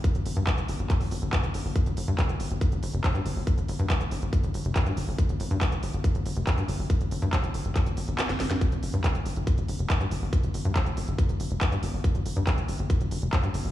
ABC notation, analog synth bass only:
X:1
M:4/4
L:1/16
Q:1/4=140
K:Fmix
V:1 name="Analog synth bass" clef=bass
z G,,, G,,, G,, z G,,, G,,, G,,, z G,,, G,,, G,,, z G,,, G,,, G,,, | z G,,, G,,, G,, z G,,, G,,, G,,, z G,,, G,,, F,,, z G,, G,,, G,,, | z G,,, G,,, G,, z G,,, G,,, G,,, z G,,, G,,, F,,, z G,, G,,, G,,, | z G,,, G,,, G,, z G,,, G,,, G,,, z G,,, G,,, F,,, z G,, G,,, G,,, |
z G,,, G,,, G,, z G,,, G,,, G,,, z G,,, G,,, G,,, z G,,, G,,, G,, | z G,,, G,,, G,, z G,,, G,,, G,,, z G,,, G,,, F,,, z G,, G,,, G,,, | z G,,, G,,, G,, z G,,, G,,, G,,, z G,,, G,,, F,,, z G,, G,,, G,,, | z G,,, G,,, G,, z G,,, G,,, G,,, z G,,, G,,, F,,, z G,, G,,, G,,, |]